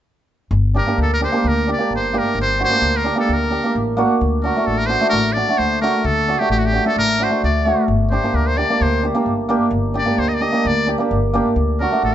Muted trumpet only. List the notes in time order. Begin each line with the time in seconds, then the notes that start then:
0.78 A#4
1.02 A4
1.13 A#4
1.24 C5
1.47 A#4
1.72 D5
1.95 C5
2.18 A#4
2.41 C5
2.64 C5
2.96 A#4
3.19 A4
3.33 A#4
4.43 A#4
4.66 A4
4.78 A#4
4.87 C5
5.09 A#4
5.33 D5
5.58 C5
5.81 A#4
6.06 A4
6.39 G4
6.51 G4
6.58 F#4
6.66 G4
6.87 A4
6.99 A#4
7.23 C5
7.44 D5
8.10 C5
8.35 A#4
8.47 C5
8.57 D5
8.82 C5
9.98 D5
10.19 C5
10.28 D#5
10.34 D5
10.42 D#5
10.67 D5
11.80 A#4
12.04 A4